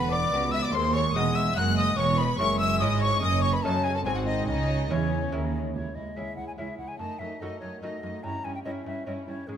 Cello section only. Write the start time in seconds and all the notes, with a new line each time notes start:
Already playing: E2
0.33 C#2
0.74 D#2
1.15 E2
1.57 F#2
1.98 E2
2.40 F#2
2.81 G#2
3.22 F#2
3.64 F#3
4.06 G#2
4.48 C#3
4.90 E3
5.33 D#3
5.74 C#2
5.96 C#2
6.16 C#2
6.37 C#2
6.58 C#2
6.79 C#2
7.00 F#2
7.21 F#2
7.41 F#2
7.62 F#2
7.82 F#2
8.03 F#2
8.24 G2
8.45 G2
8.66 G2
8.86 G2
9.07 G2
9.28 G2
9.49 G#2